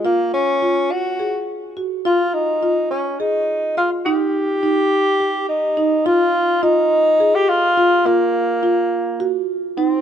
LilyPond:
<<
  \new Staff \with { instrumentName = "Marimba" } { \time 7/8 \key f \minor \tempo 4 = 105 f'4 f'4 aes'4 ges'8 | f'4 f'4 aes'4 f'8 | ees'4 ees'4 g'4 ees'8 | f'4 f'4 aes'4 f'8 |
f'4 f'4 ges'4 ees'8 | }
  \new Staff \with { instrumentName = "Tenor saxophone" } { \time 7/8 \key f \minor bes8 des'4 ges'4 r4 | f'8 ees'4 des'8 ees'4 f'8 | g'2~ g'8 ees'4 | f'4 ees'4~ ees'16 g'16 f'4 |
bes2~ bes8 r8 c'8 | }
>>